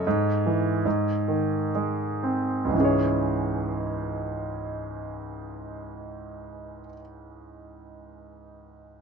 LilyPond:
<<
  \new Staff \with { instrumentName = "Grand piano" } { \time 3/4 \key cis \minor \tempo 4 = 58 <a' cis''>2 r4 | r2. | r2. | }
  \new Staff \with { instrumentName = "Grand piano" } { \clef bass \time 3/4 \key cis \minor gis,8 e8 gis,8 dis8 gis8 bis8 | <cis, gis, e cis' gis' cis''>2.~ | <cis, gis, e cis' gis' cis''>2. | }
>>